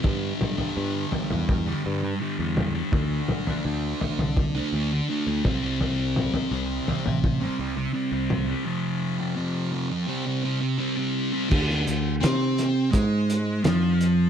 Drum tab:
CC |----------------|----------------|----------------|----------------|
HH |----------------|----------------|----------------|----------------|
SD |----------------|----------------|----------------|----------------|
T2 |--o-----------o-|--o-----------o-|--o-----------o-|----------------|
FT |o-oo--ooo-----o-|o-oo--ooo-----o-|o-oo--ooo-----o-|----------------|
BD |o-------o-------|o-------o-----o-|--------o-------|----------------|

CC |x---------------|
HH |--x-x-x-x-x-x-x-|
SD |-o--o-o-----o---|
T2 |----------------|
FT |----------------|
BD |o-------o-------|